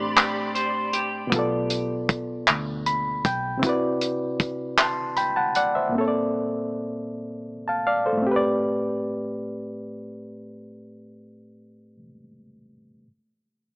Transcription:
Already playing: A1 A2 A3 C4 D4 G4 C5 D5 B5 C6
0.16 G4, clap, closed hi-hat
0.55 C5, closed hi-hat
0.93 G4, closed hi-hat
1.27 B2 B3
1.32 B1 F4, kick, closed hi-hat
1.36 A4 D5
1.70 closed hi-hat
2.09 kick, closed hi-hat
2.48 D2, clap, closed hi-hat
2.86 B5, closed hi-hat
3.25 B1 G5, kick, closed hi-hat
3.57 C3 C4
3.62 E4 F#4, kick, closed hi-hat
3.67 B4 D5
4.01 closed hi-hat
4.39 kick, closed hi-hat
4.78 A5 C6, clap, closed hi-hat
5.16 G5 B5, closed hi-hat
5.36 F#5 A5
5.55 D5 F#5, closed hi-hat
5.75 C5 E5
5.89 A#2 A#3
5.95 C4 A4
6.01 C#5
6.08 D5
7.68 F5 A5
7.87 D5 F5
8.06 A4 C5
8.13 A2
8.17 A3
8.22 C4
8.27 G4
8.31 B4
8.36 D5

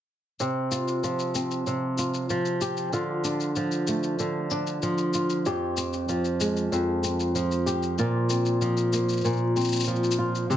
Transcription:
0.40 C3 G4, shaker
0.71 F4, shaker
0.88 shaker
1.03 F3, shaker
1.20 shaker
1.35 C4, shaker
1.51 shaker
1.67 C3, shaker
1.98 F4, shaker
2.14 shaker
2.30 F3, shaker
2.45 shaker
2.61 G4, shaker
2.77 shaker
2.93 D3 F4, shaker
3.24 D4, shaker
3.40 shaker
3.56 F3, shaker
3.72 shaker
3.87 A3, shaker
4.03 shaker
4.19 D3, shaker
4.51 D4, shaker
4.67 shaker
4.83 F3, shaker
4.98 shaker
5.14 F4, shaker
5.30 shaker
5.46 F2 G4, shaker
5.77 C4, shaker
5.93 shaker
6.09 F3, shaker
6.25 shaker
6.40 G#3, shaker
6.57 shaker
6.72 F2, shaker
7.03 C4, shaker
7.20 shaker
7.35 F3, shaker
7.52 shaker
7.66 G4, shaker
7.83 shaker
7.98 A#2 F4, shaker
8.30 C4, shaker
8.46 shaker
8.61 F3, shaker
8.77 shaker
8.93 A#3, shaker
9.09 shaker
9.13 shaker
9.17 shaker
9.21 A#2, shaker
9.25 shaker
9.29 shaker
9.33 shaker
9.37 shaker
9.56 C4, shaker
9.61 shaker
9.65 shaker
9.68 shaker
9.72 shaker
9.76 shaker
9.80 shaker
9.84 F3, shaker
9.88 shaker
9.96 shaker
10.04 shaker
10.11 shaker
10.19 F4
10.35 shaker
10.50 C3 G4, shaker

